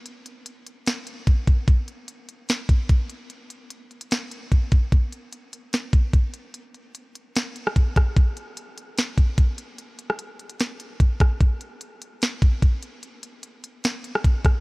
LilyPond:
\new DrumStaff \with { instrumentName = "Drums" } \drummode { \time 4/4 \tempo 4 = 148 hh8 hh8 hh8 hh8 <hh sn>8 hh8 <hh bd>8 <hh bd>8 | <hh bd>8 hh8 hh8 hh8 <hh sn>8 <hh bd>8 <hh bd>8 hh8 | hh8 hh8 hh8 hh16 hh16 <hh sn>8 hh8 <hh bd>8 <hh bd>8 | <hh bd>8 hh8 hh8 hh8 <hh sn>8 <hh bd>8 <hh bd>8 hh8 |
hh8 hh8 hh8 hh8 <hh sn>8 hh16 ss16 <hh bd>8 <hh bd ss>8 | <hh bd>8 hh8 hh8 hh8 <hh sn>8 <hh bd>8 <hh bd>8 hh8 | hh8 hh16 ss16 hh8 hh16 hh16 <hh sn>8 hh8 <hh bd>8 <hh bd ss>8 | <hh bd>8 hh8 hh8 hh8 <hh sn>8 <hh bd>8 <hh bd>8 hh8 |
hh8 hh8 hh8 hh8 <hh sn>8 hh16 ss16 <hh bd>8 <hh bd ss>8 | }